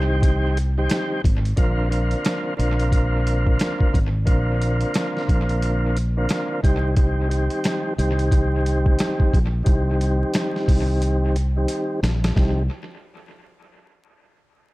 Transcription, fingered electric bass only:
Already playing: C2
1.24 G#1
1.58 A#1
2.59 A#1
3.94 G#1
4.27 A#1
5.29 A#1
6.64 C2
7.98 C2
9.33 A#1
9.67 C2
10.68 C2
12.03 A#1
12.36 C2

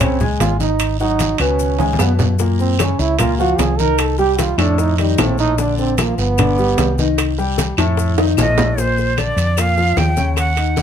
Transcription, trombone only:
0.01 C4
0.40 F4
0.60 D#4
1.00 D#4
1.40 C#4
2.00 B3
2.60 C4
2.80 C#4
3.00 E4
3.19 F4
3.38 F#4
3.59 G#4
3.79 A#4
3.99 A4
4.19 G4
4.39 F4
4.58 D4
4.79 D#4
4.99 G3
5.19 C4
5.40 D#4
5.59 D4
5.78 C4
5.99 A#3
6.18 B3

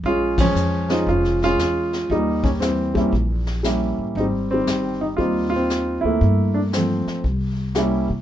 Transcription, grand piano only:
0.06 G#3 C#4 F4
0.40 F3 G#3 C#4
0.89 G#3 C#4 D#4 F4 C5
1.09 G#3 C#4 F4
1.44 G#3 C#4 F4
2.11 G3 A#3 D#4
2.44 C#4
2.60 E3 G3 C4
2.94 G3 A#3 C#4 E4
3.63 G3 A#3 C#4 E4
4.17 G3 C4 D#4
4.51 D#3 G3 C4
5.01 D#4
5.17 G3 A#3 C4 D#4 F4
5.50 F4
5.56 C4
6.01 E4
6.05 A3 A#3
6.54 D4
6.73 F3 A3 C4
7.76 G3 A#3 C#4 E4

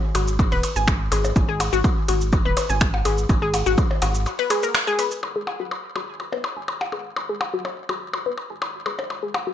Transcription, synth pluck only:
0.15 F#4
0.52 B4
0.76 G#5
1.12 G#4
1.49 G#4
1.73 F#4
2.08 F#4
2.45 B4
2.70 G#5
3.05 G#4
3.42 G#4
3.66 F#4
4.02 F#4
4.39 B4
4.50 G#4
4.63 A#4
4.87 G#4
4.99 B4
5.36 G#4
5.60 F#4
5.96 F#4
6.32 B4
6.57 G#5
6.92 G#4
7.29 G#4
7.54 F#4
7.89 F#4
8.26 B4
8.50 G#5
8.86 G#4
9.23 G#4
9.47 F#4

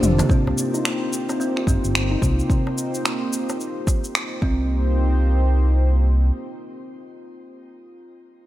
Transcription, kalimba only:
0.19 A#3
0.29 C4
0.74 D#4
0.85 A#3
1.29 C4
1.40 C4
1.56 F4
1.68 C4
2.11 D#4
2.22 A#3
4.43 C4

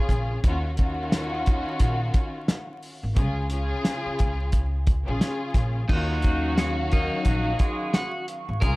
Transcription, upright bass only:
0.09 A#1
0.44 D#2
1.80 A#1
3.03 G#1
3.17 C#2
4.06 muted upright bass stroke
4.20 C#2
5.08 A#1
5.55 A#1
5.90 D#2
7.26 A#1
8.49 G#1
8.62 C#2

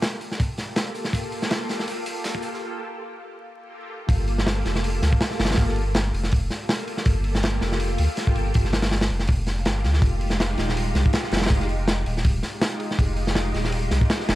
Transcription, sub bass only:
4.09 G1
4.65 F1
5.02 D2
5.39 G1
5.58 G1
6.14 F1
7.06 G1
7.62 F1
7.99 D2
8.36 G1
8.55 G1
9.10 F1
9.65 G1
9.84 D2
10.02 F1
10.58 D#1
10.95 C2
11.32 F1
11.50 F1
12.06 D#1
12.99 F1
13.54 D#1
13.91 C2
14.28 F1

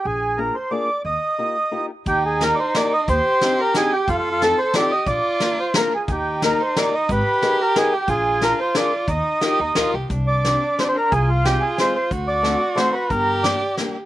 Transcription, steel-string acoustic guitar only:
0.38 A#3 D4 F4 G#4
0.71 A#3 D4 F4 G#4
1.38 A#3 D#4 F4 G4
1.71 A#3 D#4 F4 G4
2.41 A#3 D#4 G4 A#4
2.75 A#3 D#4 G4 A#4
3.42 C4 D4 D#4 G4
3.74 C4 D4 D#4 G4
4.42 C4 D#4 F4 A4
4.74 C4 D#4 F4 A4
5.40 A#3 D4 F4 A#4
5.76 A#3 D4 F4 A#4
6.43 A#3 D#4 G4 A#4
6.76 A#3 D#4 G4 A#4
7.42 B3 D#4 G#4 A#4
7.75 B3 D#4 G#4 A#4
8.42 D4 F4 G#4 A#4
8.75 D4 F4 G#4 A#4
9.41 D#4 F4 G4 A#4
9.76 D#4 F4 G4 A#4
10.46 C4 D4 G4 C5
10.79 C4 D4 G4 C5
11.45 G#3 C4 F4 G#4
11.79 G#3 C4 F4 G#4
12.42 A3 C4 D4 F#4
12.75 A3 C4 D4 F#4
13.44 G3 A#3 D4 G4
13.79 G3 A#3 D4 G4

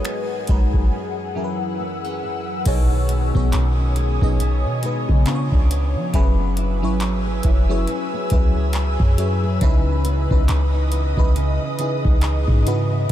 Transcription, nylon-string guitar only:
Already playing: G#2 F#3 D#4
0.05 B3
0.48 F#3
0.92 F#2
1.35 E3
1.79 B3
2.04 C#4
2.23 E3
2.66 B2
2.91 D#3
3.10 G#3
3.35 C#4
3.53 D#3
3.78 C#4
3.97 G#3
4.22 C#4
4.40 B2
4.66 D#3
4.84 G#3
5.09 C#4
5.27 C#3
5.52 D4
5.71 B3
6.14 F#3
6.39 B3
6.58 E4
6.83 G#4
7.01 B3
7.26 G#4
7.44 E4
7.70 G#4
7.88 F#3
8.13 B3
8.31 E4
8.56 G#4
8.75 B3
9.00 G#4
9.18 E4
9.43 G#4
9.61 C#3
9.87 E3
10.05 B3
10.30 D#4
10.48 E3
10.74 D#4
10.92 B3
11.17 D#4
11.36 C#3
11.61 E3
11.79 B3
12.04 D#4
12.22 E3
12.48 D#4
12.66 C#3
12.91 E4

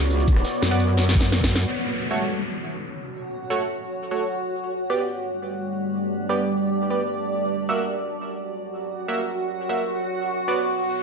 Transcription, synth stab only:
0.71 B3 F#4 D5
2.11 A3 F#4 C#5
3.50 A3 F#4 C#5
4.11 A3 F#4 C#5
4.90 B3 G4 D5
6.29 B3 G4 D5
6.90 B3 G4 D5
7.69 A#3 F#4 E5
9.08 A#3 F#4 E5
9.69 A#3 F#4 E5
10.48 B3 F#4 D5

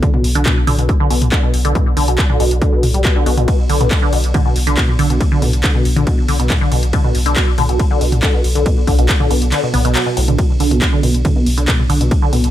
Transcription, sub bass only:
0.24 B1
0.35 B1
0.67 B1
0.79 B1
1.10 B1
1.22 B1
1.54 B1
1.65 B1
1.97 B1
2.08 B1
2.40 B1
2.51 B1
2.83 B1
2.94 B1
3.26 B1
3.38 B1
3.69 B1
3.81 B1
4.13 B1
4.24 B1
4.56 B1
4.67 B1
4.99 B1
5.10 B1
5.42 B1
5.53 B1
5.85 B1
5.97 B1
6.28 B1
6.40 B1
6.72 B1
6.83 B1
7.15 B1
7.26 B1
7.58 B1
7.69 B1
8.01 B1
8.12 B1
8.44 B1
8.55 B1
8.87 B1
8.99 B1
9.31 B1
9.42 B1
9.74 B1
9.85 B1
10.17 B1
10.28 B1
10.60 B1
10.71 B1
11.03 B1
11.15 B1
11.47 B1
11.58 B1
11.90 B1
12.01 B1
12.33 B1
12.44 B1

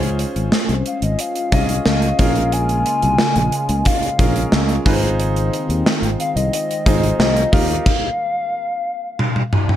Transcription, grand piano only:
Already playing: C#4 F4 G#4 C5
1.52 C#4 F4 G#4 D#5
2.19 C#4 F4 G#4 A#4
4.19 C#4 F4 G#4 A#4
4.85 D#4 F4 G#4 B4
4.93 C5
6.86 D#4 F4 G#4 C5
7.52 D#4 F4 G4 A#4

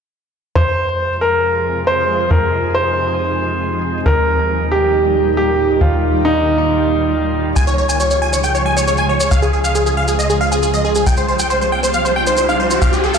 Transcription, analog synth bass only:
0.56 F2
2.31 F2
4.06 D#2
5.81 D#2
7.56 C#2
9.31 C#2
11.07 C2
12.82 C2

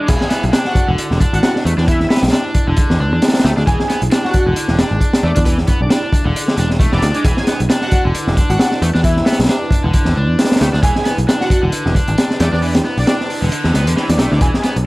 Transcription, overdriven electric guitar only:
0.08 E3
0.31 B3
0.53 D4
0.88 D3
1.20 D4
1.65 A3
1.78 D4
1.88 E3
2.10 B3
2.33 D4
2.68 D3
3.00 D4
3.45 A3
3.57 D4
3.67 E3
3.89 B3
4.12 D4
4.47 D3
4.79 D4
5.23 A3
5.36 D4
5.46 E3
5.68 B3
5.90 D4
6.25 D3
6.58 D4
6.80 A3
6.93 E3
7.03 D4
7.15 G#3
7.25 E3
7.47 B3
7.70 D4
8.05 D3
8.37 D4
8.82 A3
8.95 D4
9.04 E3
9.27 B3
9.49 D4
9.84 D3
10.16 D4
10.61 A3
10.73 D4
10.83 E3
11.06 B3
11.28 D4
11.63 D3
11.95 D4
12.40 A3
12.52 D4
12.62 E3
12.85 B3
13.07 D4
13.42 D3
13.74 B3
13.87 D3
13.97 E3
14.19 A3
14.32 D3
14.41 E3
14.64 B3

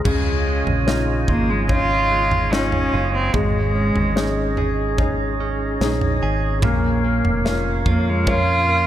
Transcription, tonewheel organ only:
0.06 F4 C#5 D#5 G#5
3.33 G#4 C#5
6.63 A#4 F5

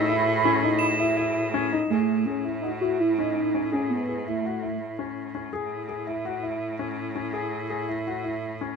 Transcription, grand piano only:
0.09 E4
0.45 C#4
0.63 D#4
1.00 E4
1.17 E4
1.54 C#4
1.73 D#4
1.91 G#4
2.27 G#4
2.45 E4
2.63 F#4
2.82 E4
3.18 C#4
3.54 C#4
3.72 G#4
4.09 G#4
4.27 E4
4.45 F#4
4.62 E4
4.99 C#4
5.35 C#4
5.53 G#4
5.89 G#4
6.07 E4
6.25 F#4
6.43 E4
6.79 C#4
7.15 C#4
7.33 G#4
7.70 G#4
7.89 E4
8.07 F#4
8.24 E4
8.61 C#4

